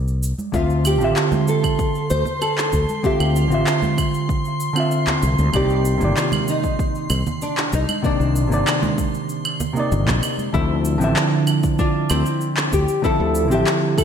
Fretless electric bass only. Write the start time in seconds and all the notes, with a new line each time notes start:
Already playing: C2
0.54 D2
1.02 A1
2.11 D2
2.73 D2
3.20 D2
3.51 A1
5.23 C2
5.39 D2
5.54 C2
6.01 G1
7.10 C2
7.73 C2
8.20 C2
8.51 G1
9.92 G1
10.08 A#1
10.55 D2
11.02 A1
12.11 D2
12.73 D2
13.20 D2
13.52 A1